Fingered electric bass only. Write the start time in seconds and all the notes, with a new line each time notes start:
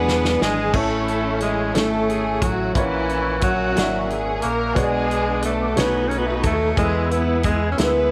Already playing: E1
0.41 G#1
0.74 A1
1.74 G#1
2.42 A1
2.76 A#1
3.76 G#1
4.44 A#1
4.76 B1
5.77 B1
6.44 D#2
6.77 E2
7.78 D2